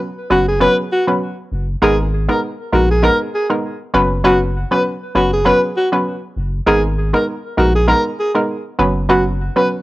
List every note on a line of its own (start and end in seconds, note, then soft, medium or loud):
0.30 0.67 F#1 medium
0.30 0.54 F#3 medium
0.30 0.54 B3 medium
0.30 0.54 C#4 medium
0.30 0.45 F#4 medium
0.30 0.54 B4 medium
0.48 0.59 G#4 medium
0.60 0.84 F#3 medium
0.60 0.84 B3 medium
0.60 0.84 C#4 medium
0.60 0.84 B4 loud
0.60 0.75 B4 medium
0.92 1.06 F#4 medium
1.07 1.29 F#3 medium
1.07 1.30 B3 medium
1.07 1.30 C#4 medium
1.07 1.30 B4 medium
1.52 1.75 F#1 medium
1.82 2.29 G#1 loud
1.82 2.05 G#3 loud
1.82 2.05 B3 medium
1.82 2.05 D#4 medium
1.82 1.97 G#4 loud
1.82 2.06 A#4 loud
2.29 2.51 G#3 medium
2.29 2.51 B3 medium
2.29 2.51 D#4 medium
2.29 2.51 A#4 medium
2.29 2.41 A#4 medium
2.73 3.09 A#1 loud
2.73 2.96 G#3 medium
2.73 2.96 B3 medium
2.73 2.96 D#4 medium
2.73 2.88 F#4 medium
2.73 2.96 A#4 medium
2.91 3.02 G#4 medium
3.03 3.26 G#3 medium
3.03 3.27 B3 medium
3.03 3.27 D#4 medium
3.03 3.27 A#4 loud
3.03 3.18 A#4 loud
3.35 3.48 G#4 medium
3.50 3.72 G#3 medium
3.50 3.72 B3 medium
3.50 3.72 D#4 medium
3.50 3.72 A#4 medium
3.94 4.64 F#1 loud
3.94 4.22 F#3 medium
3.94 4.22 B3 medium
3.94 4.22 C#4 medium
3.94 4.22 B4 loud
4.24 4.48 F#3 loud
4.24 4.48 B3 medium
4.24 4.48 C#4 medium
4.24 4.39 F#4 medium
4.24 4.48 B4 loud
4.71 4.93 F#3 medium
4.71 4.93 B3 medium
4.71 4.93 C#4 medium
4.71 4.93 B4 medium
4.71 4.84 B4 medium
5.15 5.51 F#1 loud
5.15 5.39 F#3 medium
5.15 5.39 B3 medium
5.15 5.39 C#4 medium
5.15 5.30 F#4 medium
5.15 5.39 B4 medium
5.33 5.44 G#4 medium
5.45 5.69 F#3 medium
5.45 5.69 B3 medium
5.45 5.69 C#4 medium
5.45 5.69 B4 loud
5.45 5.60 B4 medium
5.77 5.91 F#4 medium
5.92 6.14 F#3 medium
5.92 6.14 B3 medium
5.92 6.15 C#4 medium
5.92 6.15 B4 medium
6.36 6.60 F#1 medium
6.66 7.13 G#1 loud
6.66 6.90 G#3 loud
6.66 6.90 B3 medium
6.66 6.90 D#4 medium
6.66 6.82 G#4 loud
6.66 6.90 A#4 loud
7.13 7.35 G#3 medium
7.13 7.36 B3 medium
7.13 7.36 D#4 medium
7.13 7.36 A#4 medium
7.13 7.26 A#4 medium
7.57 7.94 A#1 loud
7.57 7.81 G#3 medium
7.57 7.81 B3 medium
7.57 7.81 D#4 medium
7.57 7.73 F#4 medium
7.57 7.81 A#4 medium
7.75 7.87 G#4 medium
7.88 8.11 G#3 medium
7.88 8.11 B3 medium
7.88 8.11 D#4 medium
7.88 8.12 A#4 loud
7.88 8.03 A#4 medium
8.20 8.33 G#4 medium
8.35 8.57 G#3 medium
8.35 8.57 B3 medium
8.35 8.57 D#4 medium
8.35 8.57 A#4 medium
8.79 9.49 F#1 loud
8.79 9.07 F#3 medium
8.79 9.07 B3 medium
8.79 9.07 C#4 medium
8.79 9.07 B4 medium
9.09 9.32 F#3 loud
9.09 9.33 B3 medium
9.09 9.33 C#4 medium
9.09 9.24 F#4 medium
9.09 9.33 B4 loud
9.56 9.78 F#3 medium
9.56 9.78 B3 medium
9.56 9.78 C#4 medium
9.56 9.78 B4 medium
9.56 9.68 B4 medium